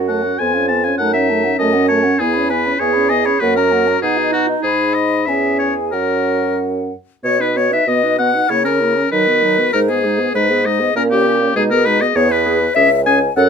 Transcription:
Already playing: F#2 C#4 F#4 F#5
0.09 A3 F#5 A5
0.23 C#4 F#5
0.38 F2 B3 F4 G#5
0.54 C#4 F5
0.68 B3 G#5 A5
0.84 C#4 F5 G#5
0.98 F#2 A3 D#4 F#5 A5
1.13 C#4 E5 F#5
1.29 A3 A5
1.44 C#4 F#5
1.58 F#2 A3 C#4 D#5 A5
1.73 C#4 F#5
1.88 A3 C#5 A5
2.03 C#4 F#5
2.19 E2 B3 E4 G#4 G#5
2.34 C#4 B5
2.50 B3 B4 G#5
2.66 C#4 B5
2.79 E2 B3 G#4 C#5 G#5
2.93 C#4 B5
3.09 B3 D#5 G#5
3.25 C#4 C#5 B5
3.40 F#2 A#3 F#4 B4 F#5
3.56 C#4 A#4 A#5
3.72 A#3 F#5
3.87 C#4 A#5
4.02 B2 D#4 F#4 G#4 F#5
4.17 D#4 D#5
4.33 F#4 F#5
4.48 D#4 D#5
4.63 G#2 D#4 G#4 B5
4.94 D#5
5.26 E2 C#4 G#4 E5 G#5
5.59 C#5
5.92 F#2 C#4 F#4 A#4 F#5
7.24 B2 B3 F#4 C#5
7.40 D#4 B4
7.56 B3 F#4 C#5
7.72 D#4 B4 E5
7.86 B2 B3 F#4 D#5
8.02 D#4 B4
8.18 B3 F#4 F#5
8.33 D#4 B4
8.49 C#3 A#3 E4 C#5
8.64 C#4 A#4
8.81 A#3 E4
8.96 C#4
9.12 D#3 F#3 D#4 B4
9.28 B3 F#4
9.43 F#3 D#4
9.59 B3 F#4
9.72 G#2 G#3 D#4 A#4
9.88 B3 G#4
10.05 G#3 D#4
10.19 B3 G#4
10.34 G#2 G#3 D#4 B4
10.50 B3 G#4
10.65 G#3 D#4 D#5
10.80 B3 G#4
10.95 A#2 A#3 C#4 A#4
11.10 A#3 C#4 G4
11.26 A#3 C#4
11.41 A#3 C#4
11.56 B2 G#3 D#4 G#4
11.71 B3 G#4 A#4
11.85 G#3 D#4 B4
12.01 B3 G#4 D#5
12.15 E2 B3 G#4 C#5
12.29 B4
12.46 B3 G#4
12.75 C#2 C#4 G#4 E5
13.05 C#4 G#4 G#5
13.36 F#2 C#4 A4 F#5

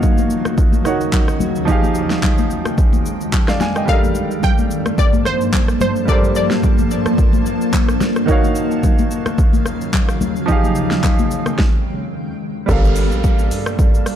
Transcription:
Already playing: D#2 C#3 D#3 F#3 D#4 F#4 C#5 F5
0.03 kick, low conga, shaker
0.18 high conga, shaker
0.30 shaker
0.45 cross-stick, high conga, shaker
0.58 kick, shaker
0.73 high conga, shaker
0.84 D#3 D#4 F#4 C#5 F#5, cross-stick, shaker
1.01 shaker
1.12 kick, clap, low conga, shaker
1.28 cross-stick, shaker
1.40 high conga, low conga, shaker
1.55 shaker
1.65 F2 D#3 F3 G#3 D#4 G4 G5, kick, shaker
1.70 G#4 F5
1.83 high conga, shaker
1.95 shaker
2.10 snare, shaker
2.23 kick, clap, low conga, shaker
2.38 high conga, shaker
2.50 shaker
2.65 cross-stick, high conga, shaker
2.78 kick, shaker
2.93 high conga, shaker
3.06 shaker
3.21 shaker
3.33 kick, clap, low conga, shaker
3.48 D5 F5, cross-stick, snare, shaker
3.61 F5 G#5, snare, high conga, low conga, shaker
3.76 D#5 G5, cross-stick, shaker
3.85 G2 F3 G3 A#3 D4 A4 F5 A5, kick, shaker
3.90 A#4 D#5
3.98 F5
4.03 high conga, shaker
4.15 shaker
4.31 shaker
4.43 G5, kick, low conga, shaker
4.58 high conga, shaker
4.71 shaker
4.86 cross-stick, high conga, shaker
4.98 D5, kick, shaker
5.13 high conga, shaker
5.25 C5, cross-stick, shaker
5.41 shaker
5.53 kick, clap, low conga, shaker
5.68 cross-stick, shaker
5.81 C5, high conga, low conga, shaker
5.96 shaker
6.05 G3 D4 A4 D5, kick, shaker
6.10 A#4 C5
6.23 high conga, shaker
6.35 D5, shaker
6.51 snare, shaker
6.63 kick, low conga, shaker
6.78 high conga, shaker
6.91 shaker
7.06 cross-stick, high conga, shaker
7.18 kick, shaker
7.33 high conga, shaker
7.46 shaker
7.61 shaker
7.73 kick, clap, low conga, shaker
7.89 cross-stick, shaker
8.01 snare, high conga, low conga, shaker
8.16 cross-stick, shaker
8.26 D#2 C#3 D#3 F#3 D#4 F#4 F5, kick, shaker
8.31 C#5 F5
8.43 high conga, shaker
8.55 shaker
8.71 shaker
8.83 kick, low conga, shaker
8.98 high conga, shaker
9.11 shaker
9.26 cross-stick, high conga, shaker
9.38 kick, shaker
9.53 high conga, shaker
9.66 cross-stick, shaker
9.81 shaker
9.93 kick, clap, low conga, shaker
10.09 cross-stick, shaker
10.21 high conga, low conga, shaker
10.36 shaker
10.46 F3 D#4 G4, kick, shaker
10.51 G#4 F5
10.64 high conga, shaker
10.75 shaker
10.91 snare, shaker
11.03 kick, clap, low conga, shaker
11.19 high conga, shaker
11.31 shaker
11.46 cross-stick, high conga, shaker
11.59 kick, snare
12.66 G1 G3 A#3 D4 A4 F5 A5, kick, downlifter, shaker
12.71 A#4 F5
12.85 shaker
12.96 open hi-hat, shaker
13.12 A#1, shaker
13.24 kick, shaker
13.39 shaker
13.51 G2, open hi-hat, shaker
13.66 cross-stick, shaker
13.79 kick, shaker
13.94 shaker
14.06 G1, cross-stick, open hi-hat, shaker

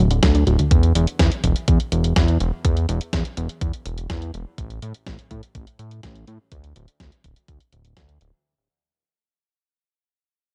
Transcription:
0.00 D1
0.11 D3, closed hi-hat
0.23 D2 F#3, kick, snare, closed hi-hat
0.35 D4, closed hi-hat
0.47 D1 F#3, closed hi-hat
0.59 D2, closed hi-hat
0.71 E2, kick, closed hi-hat
0.83 closed hi-hat
0.95 E1, closed hi-hat
1.07 closed hi-hat
1.19 E2, kick, snare, closed hi-hat
1.32 closed hi-hat
1.44 E1, kick, closed hi-hat
1.56 closed hi-hat
1.68 E2, kick, closed hi-hat
1.80 closed hi-hat
1.92 E1, closed hi-hat
2.04 closed hi-hat
2.16 E2, kick, snare, closed hi-hat
2.28 closed hi-hat
2.40 E1, closed hi-hat
2.65 E2, kick, closed hi-hat
2.77 closed hi-hat
2.89 E1, closed hi-hat
3.01 closed hi-hat
3.13 E2, kick, snare, closed hi-hat
3.25 closed hi-hat
3.37 E1, closed hi-hat
3.49 closed hi-hat
3.61 E2, kick, closed hi-hat
3.73 closed hi-hat
3.86 E1, closed hi-hat
3.98 closed hi-hat
4.10 E2, kick, snare, closed hi-hat
4.22 closed hi-hat
4.34 E1, closed hi-hat
4.58 A1, kick, closed hi-hat
4.70 closed hi-hat
4.82 A2, closed hi-hat
4.94 closed hi-hat
5.07 A1, kick, snare, closed hi-hat
5.19 closed hi-hat
5.31 A2, kick, closed hi-hat
5.43 closed hi-hat
5.55 A1, kick, closed hi-hat
5.67 closed hi-hat
5.79 A2, closed hi-hat
5.91 closed hi-hat
6.03 A1, kick, snare, closed hi-hat
6.15 closed hi-hat
6.27 A2, closed hi-hat
6.52 D2, kick, closed hi-hat
6.64 closed hi-hat
6.76 D1, closed hi-hat
6.88 closed hi-hat
7.00 D2, kick, snare, closed hi-hat
7.12 closed hi-hat
7.24 D1, kick, closed hi-hat
7.36 closed hi-hat
7.48 D2, kick, closed hi-hat
7.60 closed hi-hat
7.73 D1, closed hi-hat
7.85 closed hi-hat
7.97 D2, kick, snare, closed hi-hat
8.09 closed hi-hat
8.21 D1, closed hi-hat

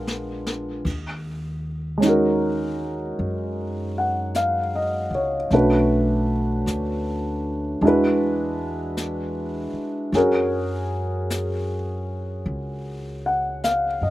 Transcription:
Already playing: A#1 G#3 B3 D4 F4 A#4
0.07 snare
0.47 snare
0.85 D#2, brush sweep, kick, ride
1.98 G#3 C#4
2.02 D#4 F#4, brush sweep, snare, hi-hat pedal
2.09 A#4
3.19 F#2, brush sweep
3.98 F#5
4.35 F5, brush sweep, snare, hi-hat pedal
4.75 D#5
5.10 C#2
5.15 C#5
5.50 B1 A3 C#4 D4 F#4, brush sweep, snare
5.55 B4
6.66 D2, brush sweep, snare, hi-hat pedal
7.81 E2 G#3 D4 E4, brush sweep
7.86 F#4 B4
8.97 brush sweep, snare, hi-hat pedal
9.73 muted upright bass stroke
10.12 F#2 C#4 G#4, brush sweep, snare
10.16 F#4 A#4
11.30 brush sweep, snare, hi-hat pedal
12.46 C#2, brush sweep
13.26 F#5
13.64 F5, brush sweep, snare, hi-hat pedal
14.01 F#2 D#5

